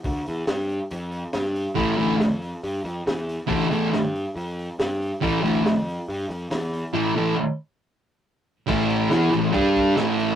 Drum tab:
CC |----------------|----------------|----------------|----------------|
RD |----------------|----------------|----------------|----------------|
HH |o-o-o-o-o-o-o-o-|o-o-o-o-o-o-o-o-|o-o-o-o-o-o-o-o-|o-o-o-o-o-o-o-o-|
SD |----o-------oo--|----o-------o---|----o-------o---|----o-------o---|
BD |o---------------|o---------------|o---------------|o---------------|

CC |----------------|x---------------|
RD |----------------|--x-x-x-x-x-x-x-|
HH |----------------|----------------|
SD |----------------|----o-o-----o---|
BD |----------------|o-------o-o-----|